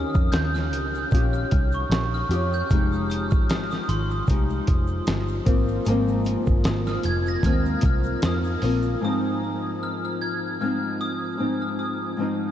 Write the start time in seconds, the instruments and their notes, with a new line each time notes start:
Already playing: nylon-string guitar D#3 C#4 F4 G4, glockenspiel D#6
0.10 glockenspiel F6
0.14 picked electric bass F2, glockenspiel D#6, kick, shaker
0.32 picked electric bass D#2, glockenspiel G6, snare, closed hi-hat, shaker
0.54 glockenspiel F6, snare, shaker
0.73 picked electric bass C#2, closed hi-hat, shaker
0.95 glockenspiel G6, shaker
1.11 picked electric bass A#1, nylon-string guitar D#3 C#4 F4 G4, kick, closed hi-hat, shaker
1.33 glockenspiel F6, shaker
1.51 picked electric bass C2, kick, closed hi-hat
1.72 glockenspiel C#6, shaker
1.90 picked electric bass A#1, glockenspiel D#6, snare, closed hi-hat, shaker
2.14 glockenspiel F6, shaker
2.29 picked electric bass F2, nylon-string guitar F4 G4, closed hi-hat, shaker
2.34 nylon-string guitar C#4
2.53 glockenspiel G6, shaker
2.69 picked electric bass F1, nylon-string guitar F3 G#3 D#4, glockenspiel F6, kick, closed hi-hat, shaker
2.75 nylon-string guitar G4
2.92 glockenspiel D#6, shaker
3.10 glockenspiel D#6, closed hi-hat, shaker
3.30 picked electric bass G#1, glockenspiel F6, kick, shaker
3.50 glockenspiel D#6, snare, closed hi-hat, shaker
3.71 glockenspiel D#6, snare, shaker
3.89 picked electric bass G#1, glockenspiel C6, closed hi-hat, shaker
4.11 glockenspiel D#6, shaker
4.27 picked electric bass C2, nylon-string guitar F3 G#3 D#4 G4, kick, closed hi-hat, shaker
4.50 shaker
4.67 picked electric bass F1, kick, closed hi-hat
4.87 shaker
5.07 picked electric bass G1, snare, closed hi-hat, shaker
5.28 shaker
5.45 picked electric bass G#1, nylon-string guitar F3 A#3 C4, kick, closed hi-hat, shaker
5.68 shaker
5.85 picked electric bass G#1, nylon-string guitar G#2 F3 A#3, closed hi-hat, shaker
5.90 nylon-string guitar C4
6.08 shaker
6.25 closed hi-hat, shaker
6.46 picked electric bass G1, kick, shaker
6.64 picked electric bass G#1, glockenspiel D#6, snare, closed hi-hat, shaker
6.87 glockenspiel F6, snare, shaker
7.03 picked electric bass F1, glockenspiel G#6, closed hi-hat, shaker
7.26 glockenspiel A#6, shaker
7.43 picked electric bass D#2, nylon-string guitar G#2 F3 A#3 C4, glockenspiel F6, kick, closed hi-hat, shaker
7.66 shaker
7.81 picked electric bass C2, kick, closed hi-hat, shaker
7.86 glockenspiel F6
8.04 shaker
8.22 picked electric bass F2, glockenspiel D#6, snare, closed hi-hat, shaker
8.44 shaker
8.62 picked electric bass A#1, nylon-string guitar F3 A#3 C4, open hi-hat, shaker
8.82 shaker
9.01 nylon-string guitar G#2 F3 C4, glockenspiel D#6
9.06 nylon-string guitar D#4
9.83 glockenspiel F6
10.05 glockenspiel F6
10.22 glockenspiel G#6
10.60 nylon-string guitar G#2 F3 C4 D#4, glockenspiel F6
11.01 glockenspiel D#6
11.37 nylon-string guitar G#2 F3 C4 D#4
11.62 glockenspiel F6
11.79 glockenspiel D#6
12.17 nylon-string guitar G#2 F3 C4
12.22 nylon-string guitar D#4